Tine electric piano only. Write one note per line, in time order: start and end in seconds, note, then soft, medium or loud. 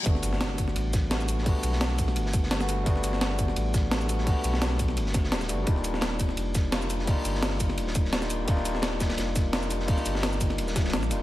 0.03 1.08 G3 loud
0.03 1.08 A3 medium
0.03 1.09 B3 medium
0.07 1.10 D4 medium
0.07 1.10 F#4 loud
1.09 1.15 G3 medium
1.09 1.16 A3 medium
1.09 1.16 B3 medium
1.09 1.16 D4 medium
1.09 1.17 F#4 medium
1.43 2.57 G3 loud
1.43 2.58 A3 medium
1.43 2.59 B3 medium
1.47 2.59 D4 medium
1.47 2.60 F#4 loud
2.59 2.82 G3 medium
2.59 2.84 A3 medium
2.59 2.84 B3 medium
2.59 2.85 D4 medium
2.59 2.85 F#4 loud
2.84 3.88 G3 loud
2.84 3.89 A3 medium
2.84 3.90 B3 loud
2.88 3.90 D4 medium
2.88 3.91 F#4 loud
3.90 3.96 G3 medium
3.90 3.96 A3 medium
3.90 3.97 B3 medium
3.90 3.97 D4 medium
3.90 3.97 F#4 medium
4.24 5.38 G3 loud
4.24 5.39 A3 medium
4.24 5.39 B3 medium
4.28 5.40 D4 medium
4.28 5.41 F#4 loud
5.48 5.63 G3 medium
5.48 5.65 A3 medium
5.48 5.65 B3 medium
5.48 5.65 D4 medium
5.48 5.66 F#4 medium
5.64 6.69 G3 loud
5.64 6.70 A#3 medium
5.64 6.70 D4 loud
5.68 6.71 D#4 medium
5.68 6.72 F4 loud
6.71 6.77 G3 medium
6.71 6.77 A#3 medium
6.71 6.78 D4 medium
6.71 6.78 D#4 medium
6.71 6.78 F4 medium
7.05 8.19 G3 loud
7.05 8.20 A#3 medium
7.05 8.20 D4 medium
7.09 8.21 D#4 medium
7.09 8.22 F4 loud
8.21 8.44 G3 medium
8.21 8.46 A#3 medium
8.21 8.46 D4 medium
8.21 8.46 D#4 medium
8.21 8.47 F4 medium
8.45 9.50 G3 loud
8.45 9.51 A#3 loud
8.45 9.51 D4 loud
8.49 9.52 D#4 medium
8.49 9.53 F4 loud
9.52 9.58 G3 medium
9.52 9.58 A#3 medium
9.52 9.58 D4 medium
9.52 9.59 D#4 medium
9.52 9.59 F4 medium
9.85 11.00 G3 loud
9.85 11.00 A#3 medium
9.85 11.01 D4 medium
9.90 11.02 D#4 medium
9.90 11.02 F4 loud
11.10 11.22 G3 medium
11.10 11.22 A#3 medium
11.10 11.22 D4 medium
11.10 11.22 D#4 medium
11.10 11.22 F4 medium